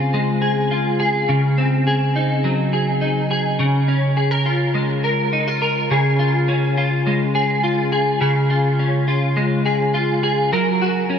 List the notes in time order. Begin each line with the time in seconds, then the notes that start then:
Already playing: C#3 G#3 C4 F4 G#4
0.14 G#3
0.42 G#4
0.71 F4
1.00 G#4
1.29 C#3
1.58 C4
1.87 G#4
2.16 D#4
2.44 F#3
2.73 G#4
3.01 D#4
3.31 G#4
3.59 C#3
3.88 C#4
4.17 G#4
4.31 A#4
4.46 F4
4.74 G#3
5.04 A#4
5.33 D#4
5.48 F4
5.62 A#4
5.91 C#3 G#4
6.19 F4
6.48 C#4
6.77 F4
7.07 G#3
7.35 G#4
7.63 F4
7.92 G#4
8.21 C#3 G#4
8.50 F4
8.79 C#4
9.08 F4
9.37 G#3
9.66 G#4
9.94 F4
10.23 G#4
10.52 F#3 A#4
10.82 F#4
11.10 C#4